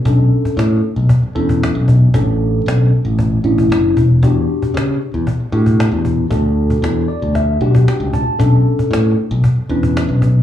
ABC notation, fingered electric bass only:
X:1
M:4/4
L:1/16
Q:1/4=115
K:Bm
V:1 name="Fingered electric bass" clef=bass
B,,,2 z2 A,,2 z B,,, z2 E,,3 B,,,3 | A,,,4 B,,,2 z A,,,3 A,,,2 F,,,2 E,,,2 | E,,2 z2 C,2 z E,, z2 A,,3 E,,3 | D,,4 E,,2 z D,,3 B,,,2 z C,,2 z |
B,,,2 z2 A,,2 z B,,, z2 E,,3 B,,,3 |]